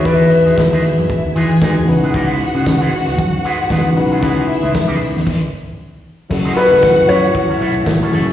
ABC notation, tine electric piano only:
X:1
M:4/4
L:1/8
Q:"Swing 16ths" 1/4=115
K:F#dor
V:1 name="Tine electric piano"
[E,B,EFG]3 z3 [E,B,DFG] [C,CDEB]- | [C,CDEB]2 z4 [C,CDEB] [C,CDEB] | [C,B,CEB]3 z4 z | [F,CEGA] [F,CEGA]3 z3 [F,CEGA] |]